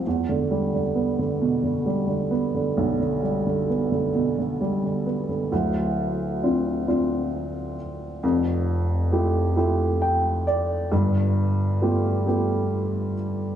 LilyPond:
<<
  \new Staff \with { instrumentName = "Upright piano" } { \time 6/8 \key e \phrygian \tempo 4. = 44 r2. | r2. | r2. | r2 g''8 d''8 |
r2. | }
  \new Staff \with { instrumentName = "Upright piano" } { \clef bass \time 6/8 \key e \phrygian e,16 d16 g16 d16 b16 d16 b,16 d16 g16 d16 b16 d16 | b,,16 d16 g16 d16 b16 d16 b,16 d16 g16 d16 b16 d16 | <d,, d,>4 <c' d' f'>8 <c' d' f'>4 r8 | <f,, f,>4 <a e' f' g'>8 <a e' f' g'>4 r8 |
<g,, g,>4 <a b f' g'>8 <a b f' g'>4 r8 | }
>>